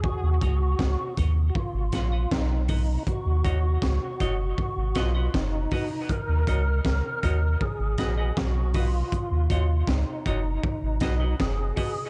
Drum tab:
HH |-x-x-x-o|px-x-x-o|px-x-x-o|px-x-x-o|
SD |--o--oo-|--o--oo-|--o--oo-|--o--oo-|
BD |oooooooo|oooooooo|oooooooo|oooooooo|